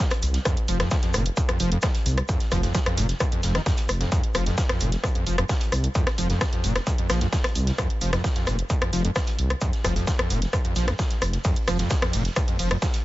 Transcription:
0.11 cross-stick, closed hi-hat
0.22 C2, open hi-hat, shaker
0.34 snare, closed hi-hat
0.45 F2, kick, cross-stick, closed hi-hat, shaker
0.57 closed hi-hat
0.68 F1 F3, open hi-hat, shaker
0.80 F2, cross-stick, snare, closed hi-hat
0.91 F3, kick, snare, closed hi-hat, shaker
1.03 F2, snare, closed hi-hat
1.14 F1 A#2, cross-stick, open hi-hat, shaker
1.26 closed hi-hat
1.37 F2, kick, closed hi-hat, shaker
1.49 F2, cross-stick, closed hi-hat
1.60 F1 F3, open hi-hat, shaker
1.72 F2, closed hi-hat
1.82 F3, kick, cross-stick, snare, closed hi-hat, shaker
1.95 closed hi-hat
2.06 C2, open hi-hat, shaker
2.18 cross-stick, closed hi-hat
2.28 F2, kick, closed hi-hat, shaker
2.40 snare, closed hi-hat
2.51 F1 F3, kick, cross-stick, open hi-hat, shaker
2.63 F2, snare, open hi-hat
2.74 F3, kick, snare, closed hi-hat, shaker
2.86 F2, cross-stick, closed hi-hat
2.97 F1 A#2, open hi-hat, shaker
3.09 snare, closed hi-hat
3.20 F2, kick, cross-stick, closed hi-hat, shaker
3.32 F2, closed hi-hat
3.43 F1 F2, snare, open hi-hat, shaker
3.55 D#3, cross-stick, snare, closed hi-hat
3.66 F2, kick, snare, closed hi-hat, shaker
3.77 closed hi-hat
3.89 F1, cross-stick, open hi-hat, shaker
4.01 F2, snare, closed hi-hat
4.12 F2, kick, closed hi-hat, shaker
4.24 closed hi-hat
4.34 F1 F3, cross-stick, open hi-hat, shaker
4.46 F2, snare, closed hi-hat
4.57 F3, kick, snare, closed hi-hat, shaker
4.69 F2, cross-stick, snare, closed hi-hat
4.80 F1 A#2, open hi-hat, shaker
4.92 snare, closed hi-hat
5.04 F2, kick, cross-stick, closed hi-hat, shaker
5.15 F2, closed hi-hat
5.26 F1 F3, open hi-hat, shaker
5.38 F2, cross-stick, closed hi-hat
5.49 F3, kick, snare, closed hi-hat, shaker
5.61 closed hi-hat
5.72 C2, cross-stick, open hi-hat, shaker
5.84 closed hi-hat
5.95 F2, kick, closed hi-hat, shaker
6.07 cross-stick, snare, closed hi-hat
6.18 F1 F3, open hi-hat, shaker
6.30 F2, snare, open hi-hat
6.41 F3, kick, cross-stick, snare, closed hi-hat, shaker
6.53 F2, closed hi-hat
6.64 F1 A#2, open hi-hat, shaker
6.75 cross-stick, snare, closed hi-hat
6.87 F2, kick, closed hi-hat, shaker
6.98 F2, closed hi-hat
7.09 A#1 F3, cross-stick, snare, open hi-hat, shaker
7.21 F2, snare, closed hi-hat
7.33 F3, kick, snare, closed hi-hat, shaker
7.44 cross-stick, closed hi-hat
7.55 C2, open hi-hat, shaker
7.67 snare, closed hi-hat
7.78 F2, kick, cross-stick, closed hi-hat, shaker
7.90 closed hi-hat
8.01 F1 F3, open hi-hat, shaker
8.13 F2, cross-stick, snare, closed hi-hat
8.24 F3, kick, snare, closed hi-hat, shaker
8.35 F2, snare, closed hi-hat
8.47 F1 A#2, cross-stick, open hi-hat, shaker
8.59 closed hi-hat
8.70 F2, kick, closed hi-hat, shaker
8.82 F2, cross-stick, closed hi-hat
8.93 F1 F3, open hi-hat, shaker
9.04 F2, closed hi-hat
9.15 F3, kick, cross-stick, snare, closed hi-hat, shaker
9.27 closed hi-hat
9.39 C2, open hi-hat
9.50 cross-stick, closed hi-hat
9.61 F2, kick, closed hi-hat, shaker
9.73 snare, closed hi-hat
9.84 F1 F3, kick, cross-stick, open hi-hat, shaker
9.96 F2, snare, open hi-hat
10.07 F3, kick, snare, closed hi-hat, shaker
10.19 F2, cross-stick, closed hi-hat
10.30 F1 A#2, open hi-hat, shaker
10.42 snare, closed hi-hat
10.53 F2, kick, cross-stick, closed hi-hat, shaker
10.65 F2, closed hi-hat
10.76 A#1 F3, snare, open hi-hat, shaker
10.87 F2, cross-stick, snare, closed hi-hat
10.99 F3, kick, snare, closed hi-hat, shaker
11.11 snare, closed hi-hat
11.22 F1, cross-stick, open hi-hat, shaker
11.33 snare, closed hi-hat
11.44 F2, kick, closed hi-hat, ride, shaker
11.56 closed hi-hat
11.68 F1 F3, cross-stick, open hi-hat, ride, shaker
11.79 F2, snare, closed hi-hat
11.90 F3, kick, snare, closed hi-hat, ride, shaker
12.02 F2, cross-stick, snare, closed hi-hat
12.13 F1 A#2, open hi-hat, ride, shaker
12.25 snare, closed hi-hat
12.36 F2, kick, cross-stick, closed hi-hat, ride, shaker
12.48 F2, closed hi-hat
12.59 F1 F3, open hi-hat, ride, shaker
12.71 F2, cross-stick, closed hi-hat
12.82 F3, kick, snare, closed hi-hat, ride, shaker
12.94 closed hi-hat

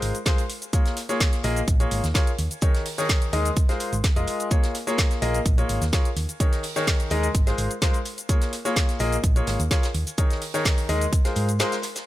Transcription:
Already playing: G#3 F4 G#4 A#4 C5
0.02 G#1, open hi-hat, shaker
0.15 closed hi-hat, cabasa
0.26 G#3 F4 G#4 A#4 C5, kick, snare, closed hi-hat, cabasa, shaker
0.38 closed hi-hat, cabasa
0.50 open hi-hat, shaker
0.62 closed hi-hat, cabasa
0.73 A#3 F4 G#4 A#4 C#5, kick, closed hi-hat, cabasa, shaker
0.86 snare, closed hi-hat, cabasa
0.97 snare, open hi-hat, shaker
1.09 A#3 F4 G#4 A#4 C#5, snare, closed hi-hat, cabasa
1.20 kick, snare, closed hi-hat, cabasa, shaker
1.33 snare, closed hi-hat, cabasa
1.44 A#1 A#3 F4 G#4 A#4 D#5, open hi-hat, shaker
1.56 closed hi-hat, cabasa
1.68 A#1, kick, closed hi-hat, cabasa, shaker
1.80 A#3 F4 G#4 A#4 C#5, closed hi-hat, cabasa
1.91 G#1, open hi-hat, shaker
2.04 D#2, snare, closed hi-hat, cabasa
2.14 F4 G#4 A#4 C#5, kick, snare, closed hi-hat, cabasa, shaker
2.27 closed hi-hat, cabasa
2.39 D#2, open hi-hat, shaker
2.51 closed hi-hat, cabasa
2.62 D#3 D#4 G#4 A#4 C#5, kick, closed hi-hat, cabasa, shaker
2.75 snare, closed hi-hat, cabasa
2.86 open hi-hat
2.98 D#3 D#4 G#4 A#4 C#5, snare, closed hi-hat, cabasa
3.09 kick, snare, closed hi-hat, cabasa, shaker
3.22 closed hi-hat, cabasa
3.33 D#2 G#3 D#4 G#4 A#4 D#5, open hi-hat, shaker
3.45 closed hi-hat, cabasa
3.57 kick, closed hi-hat, cabasa, shaker
3.69 G#3 F4 G#4 A#4 C5, snare, closed hi-hat, cabasa
3.80 open hi-hat, shaker
3.93 G#1, closed hi-hat, cabasa
4.04 kick, snare, closed hi-hat, cabasa, shaker
4.16 F1 G#3 F4 G#4 A#4 D#5, closed hi-hat, cabasa
4.28 open hi-hat, shaker
4.40 closed hi-hat, cabasa
4.51 A#3 F4 G#4 A#4 C#5, kick, closed hi-hat, cabasa, shaker
4.63 snare, closed hi-hat, cabasa
4.75 snare, open hi-hat, shaker
4.87 A#3 F4 G#4 A#4 C#5, snare, closed hi-hat, cabasa
4.98 kick, snare, closed hi-hat, cabasa, shaker
5.11 snare, closed hi-hat, cabasa
5.22 A#1 A#3 F4 G#4 A#4 D#5, open hi-hat, shaker
5.34 closed hi-hat, cabasa
5.46 A#1, kick, closed hi-hat, cabasa, shaker
5.58 A#3 F4 G#4 A#4 C#5, closed hi-hat, cabasa
5.69 G#1, open hi-hat, shaker
5.82 D#2, snare, closed hi-hat, cabasa
5.93 F4 G#4 A#4 C#5, kick, snare, closed hi-hat, cabasa, shaker
6.05 closed hi-hat, cabasa
6.16 D#2, open hi-hat, shaker
6.29 closed hi-hat, cabasa
6.40 D#3 D#4 G#4 A#4 C#5, kick, closed hi-hat, cabasa, shaker
6.52 snare, closed hi-hat, cabasa
6.63 open hi-hat
6.76 D#3 D#4 G#4 A#4 C#5, snare, closed hi-hat, cabasa
6.87 kick, snare, closed hi-hat, cabasa, shaker
7.00 closed hi-hat, cabasa
7.10 D#2 G#3 D#4 G#4 A#4 D#5, open hi-hat, shaker
7.23 closed hi-hat, cabasa
7.35 G#1, kick, closed hi-hat, cabasa, shaker
7.47 G#3 F4 G#4 A#4 C5, snare, closed hi-hat, cabasa
7.58 G#1, open hi-hat, shaker
7.71 closed hi-hat, cabasa
7.82 G#3 F4 G#4 A#4 C5, kick, snare, closed hi-hat, cabasa, shaker
7.93 closed hi-hat, cabasa
8.05 open hi-hat, shaker
8.18 closed hi-hat, cabasa
8.29 A#3 F4 G#4 A#4 C#5, kick, closed hi-hat, cabasa, shaker
8.41 snare, closed hi-hat, cabasa
8.53 snare, open hi-hat, shaker
8.65 A#3 F4 G#4 A#4 C#5, snare, closed hi-hat, cabasa
8.76 kick, snare, closed hi-hat, cabasa, shaker
8.88 snare, closed hi-hat, cabasa
8.99 A#1 A#3 F4 G#4 A#4 D#5, open hi-hat, shaker
9.12 closed hi-hat, cabasa
9.24 A#1, kick, closed hi-hat, cabasa, shaker
9.36 A#3 F4 G#4 A#4 C#5, closed hi-hat, cabasa
9.47 G#1, snare, open hi-hat, shaker
9.60 D#2, closed hi-hat, cabasa
9.71 F4 G#4 A#4 C#5, kick, snare, closed hi-hat, cabasa, shaker
9.83 snare, closed hi-hat, cabasa, shaker
9.94 D#2, closed hi-hat, open hi-hat
10.07 closed hi-hat, cabasa, shaker
10.18 D#3 D#4 G#4 A#4 C#5, kick, closed hi-hat, cabasa, shaker
10.30 snare, closed hi-hat, cabasa
10.42 open hi-hat
10.54 D#3 D#4 G#4 A#4 C#5, snare, closed hi-hat, cabasa
10.65 kick, snare, closed hi-hat, cabasa, shaker
10.78 open hi-hat, cabasa
10.89 D#2 G#3 D#4 G#4 A#4 D#5, open hi-hat, shaker
11.01 closed hi-hat, cabasa
11.13 kick, closed hi-hat, cabasa, shaker
11.25 G#3 F4 G#4 A#4 C5, snare, closed hi-hat, cabasa
11.36 G#2, open hi-hat, shaker
11.49 closed hi-hat, cabasa
11.59 G#3 F4 G#4 A#4 C5, snare, closed hi-hat, cabasa, shaker
11.72 snare, closed hi-hat, cabasa, shaker
11.82 snare, open hi-hat, shaker
11.96 snare, closed hi-hat, cabasa, shaker

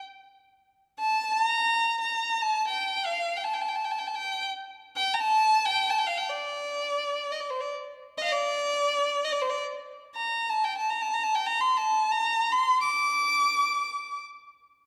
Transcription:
0.99 A5
1.31 A#5
2.01 A#5
2.42 A5
2.68 G5
3.05 F5
3.36 G5
3.43 A5
3.53 G5
3.61 A5
3.68 G5
3.75 A5
3.85 G5
3.91 A5
3.99 G5
4.07 A5
4.15 G5
4.96 G5
5.14 A#5
5.20 A5
5.65 G5
5.89 A5
5.98 G5
6.06 F5
6.17 G5
6.29 D5
7.31 D#5
7.40 D5
7.50 C5
7.60 D5
8.18 D#5
8.22 D#5 F5
8.32 D5
9.24 D#5
9.32 D5
9.41 C5
9.49 D5
10.15 A#5
10.49 A5
10.64 G5
10.78 A5
10.90 A#5
11.02 A5
11.13 A#5
11.23 A5
11.35 G5
11.46 A#5
11.61 C6
11.77 A5
12.11 A#5
12.52 C6
12.80 D6

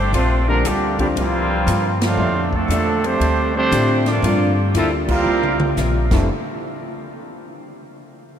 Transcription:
Already playing: G1 G3 A3 C4 D4 G4 C5
0.13 A#1 G3 A3 A#3 C4 D4 F4 A4 C5, ride
0.47 D3 F3 G3 A3 A#3 C4 D4 F4 A#4
0.64 D2 A#2 D3 G3 A#3 D4 F4 G4 A4, hi-hat pedal, ride
0.99 A#2 D3 G3 A#3 C4 D4 F4 G4, kick, ride
1.16 C2 G2 A#2 C3 F3 G3 A#3 C4 F4, ride
1.67 G2 C3 G3 A#3 F4, hi-hat pedal, ride
2.01 A2 D3 F3, snare, ride
2.05 A3 C4 D4 F4
2.17 F2 A#2 A3 D4 G4
2.52 D3 F3 A3 C4 D4 A4, kick
2.68 E2 A#2 A3 D4 G4, hi-hat pedal, ride
3.04 G3 A3 C4 D4 G4 C5, ride
3.20 D2 D3 A3 C4 G4, ride
3.55 G3 A3 C4 D4 G4 C5
3.71 A2 D3 G3 A3 C4 F4 G4, hi-hat pedal, ride
4.06 F3 A#3 D4 F4 A4 D5, snare, ride
4.22 G2 D3 G3 A#3 C4 F4 A4, ride
4.74 D2 G3 A#3 C4 E4 F4 A4 E5, hi-hat pedal, ride
5.07 G3 A#3 C4 F4 G4 A#4 F5, kick, crash
5.25 C2 C3 G3 A#3 F4
5.43 mid tom
5.60 mid tom
5.77 A#1 C3 G3 A#3 F4, snare, hi-hat pedal
6.11 F1 F2 C3 D3 E3 F3 G3 A3 C4 E4 A4, kick, snare, crash

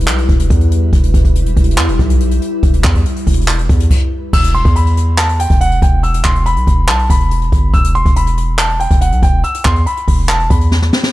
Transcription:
Already playing: G3 E4 B4
0.01 closed hi-hat
0.08 B1, clap, closed hi-hat
0.18 closed hi-hat
0.29 E1, kick, closed hi-hat
0.40 closed hi-hat
0.50 E2, kick, closed hi-hat
0.61 closed hi-hat
0.71 closed hi-hat
0.93 E1 G3 E4, kick, closed hi-hat
1.03 closed hi-hat
1.14 E1, kick, closed hi-hat
1.25 kick, closed hi-hat
1.35 closed hi-hat
1.46 closed hi-hat
1.57 E1, kick, closed hi-hat
1.64 closed hi-hat
1.71 closed hi-hat
1.78 E2, clap, closed hi-hat
1.88 E1, closed hi-hat
1.99 B1, kick, closed hi-hat
2.10 closed hi-hat
2.20 closed hi-hat
2.31 closed hi-hat
2.42 closed hi-hat
2.63 E1, kick, closed hi-hat
2.74 closed hi-hat
2.84 E2, kick, clap, closed hi-hat
2.95 kick, closed hi-hat
3.05 closed hi-hat
3.16 closed hi-hat
3.27 E1, kick, closed hi-hat, open hi-hat
3.34 closed hi-hat
3.41 closed hi-hat
3.48 clap, closed hi-hat
3.59 closed hi-hat
3.69 E2, kick, closed hi-hat
3.80 closed hi-hat
3.91 kick, crash
4.33 E1 E6, kick, crash
4.44 closed hi-hat
4.54 C6, closed hi-hat
4.65 E2, kick, closed hi-hat
4.76 B5, closed hi-hat
4.86 closed hi-hat
4.97 closed hi-hat
5.18 A5, clap, closed hi-hat
5.29 closed hi-hat
5.40 G5, closed hi-hat
5.50 E1, kick, closed hi-hat
5.61 F#5, closed hi-hat
5.71 closed hi-hat
5.82 E1 G5, kick, closed hi-hat
6.03 E6, closed hi-hat
6.14 closed hi-hat
6.25 E1 C6, kick, clap
6.35 closed hi-hat
6.46 B5, closed hi-hat
6.57 B1, closed hi-hat
6.67 E1, kick, closed hi-hat
6.88 B1 A5, clap, closed hi-hat
6.99 closed hi-hat
7.10 E1 B5, kick, closed hi-hat
7.20 closed hi-hat
7.31 closed hi-hat
7.42 closed hi-hat
7.52 G1, kick, closed hi-hat
7.74 E1 E6, kick, closed hi-hat
7.84 closed hi-hat
7.95 C6, closed hi-hat
8.06 E1, kick, closed hi-hat
8.16 B5, closed hi-hat
8.27 closed hi-hat
8.37 closed hi-hat
8.59 A5, clap, closed hi-hat
8.69 closed hi-hat
8.80 G5, closed hi-hat
8.91 E1, kick, closed hi-hat
9.01 F#5, closed hi-hat
9.12 B1, closed hi-hat
9.23 E1 G5, kick, closed hi-hat
9.44 E6, closed hi-hat
9.54 closed hi-hat
9.65 E2 C6, kick, clap
9.76 closed hi-hat
9.86 B5, closed hi-hat
9.97 closed hi-hat
10.08 E1, kick, open hi-hat
10.29 A5, clap, closed hi-hat
10.40 closed hi-hat
10.50 E2 B5, kick, closed hi-hat
10.61 closed hi-hat
10.72 snare
10.82 snare
10.93 snare
11.03 snare

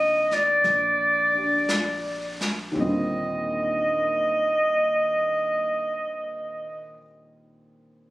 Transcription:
Already playing: D#2 D3 G3 C4 F4 D#5
0.31 D5, snare
0.64 A#1, brush sweep, snare
1.34 D4 G4
1.69 snare, hi-hat pedal
2.41 snare
2.72 D#2 A#2 D3
2.79 G3 C4 F4 D#5

